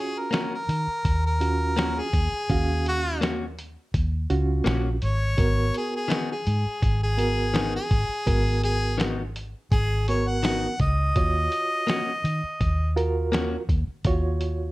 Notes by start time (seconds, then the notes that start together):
Already playing: C#4 F4 F#4
0.00 G#4
0.19 A#4
0.31 A#3 C#4 F#4, snare, closed hi-hat
0.54 A#4
0.69 D#3, closed hi-hat
0.87 muted fingered electric bass stroke
1.05 D#2, kick, closed hi-hat
1.26 A#4
1.41 C#4 F4 F#4, closed hi-hat
1.77 A#3 C#4 F#4, snare, closed hi-hat
1.99 G#4
2.13 D#2, kick, closed hi-hat
2.32 muted fingered electric bass stroke
2.50 D#2 C#4 F#4 F5, kick, closed hi-hat
2.86 F#4, closed hi-hat
3.21 A#3 C#4 F#4, snare, closed hi-hat
3.59 closed hi-hat
3.94 D#2, kick, closed hi-hat
4.30 C#2 C#4 F4 F#4, closed hi-hat
4.64 A#1 A#3 C#4 F#4, snare, closed hi-hat
5.02 G#1 C#5, closed hi-hat
5.37 G#1 B3 F#4 A#4, kick, closed hi-hat
5.74 G#4, closed hi-hat
5.96 G#4
6.08 D#3 B3 D#4 F#4, snare, closed hi-hat
6.32 G#4
6.47 G#2, closed hi-hat
6.66 muted fingered electric bass stroke
6.82 G#1, kick, closed hi-hat
7.04 G#4
7.17 B3 F#4 A#4, closed hi-hat
7.54 D#3 B3 D#4 F#4, snare, closed hi-hat
7.76 G#4
7.91 G#1, kick, closed hi-hat
8.09 muted fingered electric bass stroke
8.26 G#1 B3 F#4 A#4, kick, closed hi-hat
8.64 G#4, closed hi-hat
8.98 D#3 B3 D#4 F#4, snare, closed hi-hat
9.36 closed hi-hat
9.71 G#1 G#4, kick, closed hi-hat
10.08 B3 F#4 A#4 C#5, closed hi-hat
10.28 F#5
10.43 D#3 B3 D#4 F#4, snare, closed hi-hat
10.80 C#2 D#5, kick, closed hi-hat
11.16 D#2 F4 F#4 C#5, kick, closed hi-hat
11.52 closed hi-hat
11.87 A#3 C#4 F#4, snare, closed hi-hat
12.24 D#3, closed hi-hat
12.43 muted fingered electric bass stroke
12.61 D#2, kick, closed hi-hat
12.96 F4 F#4 A#4, closed hi-hat
13.32 A#3 C#4 F#4, snare, closed hi-hat
13.69 D#2, kick, closed hi-hat
13.88 muted fingered electric bass stroke
14.05 D#2 F4 F#4 C#5, kick, closed hi-hat
14.41 closed hi-hat